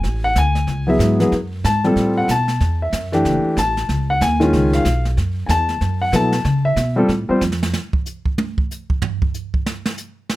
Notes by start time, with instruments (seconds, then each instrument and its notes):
Already playing: grand piano G#5
0.03 upright bass A1, brush sweep, kick, snare
0.24 grand piano F#5
0.35 upright bass D2, grand piano G#5, kick, snare, hi-hat pedal
0.55 snare
0.67 upright bass C#2, brush sweep, kick, snare
0.87 grand piano F#3 B3 E4 G#4 E5
0.99 upright bass G#2, kick, snare, hi-hat pedal
1.20 grand piano F#3 B3 E4 G#4, snare
1.32 upright bass F#2, brush sweep, kick, snare
1.64 upright bass G#2, grand piano A5, kick, snare, hi-hat pedal
1.84 grand piano G3 C4 F4 A4, snare
1.96 upright bass A2, brush sweep, kick, snare
2.17 grand piano F#5
2.28 upright bass B2, grand piano A5, kick, snare, hi-hat pedal
2.48 snare
2.60 upright bass E2, brush sweep, kick, snare
2.82 grand piano E5
2.92 upright bass F#2, kick, snare, hi-hat pedal
3.12 grand piano E3 A3 D4 G4, snare
3.25 upright bass F#1, brush sweep, kick, snare
3.44 muted upright bass stroke
3.57 upright bass A1, grand piano A5, kick, snare, hi-hat pedal
3.77 snare
3.89 upright bass C#2, brush sweep, kick, snare
4.10 grand piano F#5
4.21 upright bass D#2, grand piano G#5, kick, snare, hi-hat pedal
4.40 grand piano D#3 G#3 C#4 F4, snare
4.53 upright bass C#2, brush sweep, kick, snare
4.73 grand piano F5, snare
4.85 upright bass B1, kick, snare, hi-hat pedal
5.05 snare
5.17 upright bass F#2, brush sweep, kick, snare
5.46 upright bass E2, grand piano G#5, kick, snare, hi-hat pedal
5.50 grand piano A5
5.69 snare
5.81 upright bass F#2, brush sweep, kick, snare
6.02 grand piano F#5
6.12 upright bass B2, grand piano F#3 B3 E4 A4 A5, kick, snare, hi-hat pedal
6.32 snare
6.45 upright bass C#3, brush sweep, kick, snare
6.65 grand piano E5
6.76 upright bass B2, kick, snare, hi-hat pedal
6.96 grand piano G3 C4 F4 A4
7.09 upright bass A2, brush sweep, kick, snare
7.29 grand piano G3 C4 F4 C5, muted upright bass stroke
7.41 upright bass F2, snare, hi-hat pedal
7.52 snare
7.63 snare
7.73 snare
7.93 kick
8.06 hi-hat pedal
8.26 kick
8.38 high tom
8.58 kick
8.71 hi-hat pedal
8.90 kick
9.02 floor tom
9.22 kick
9.34 hi-hat pedal
9.54 kick
9.66 snare
9.86 snare
9.97 hi-hat pedal
10.29 snare